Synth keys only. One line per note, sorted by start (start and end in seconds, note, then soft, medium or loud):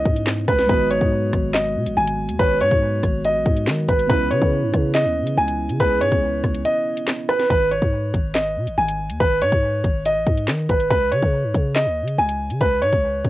0.00 0.64 B3 medium
0.00 0.65 C#4 medium
0.00 0.67 E4 medium
0.67 4.04 G#3 medium
0.67 4.06 B3 medium
0.72 4.07 F#4 medium
4.07 7.45 B3 medium
4.07 7.46 C#4 medium
4.12 7.47 E4 medium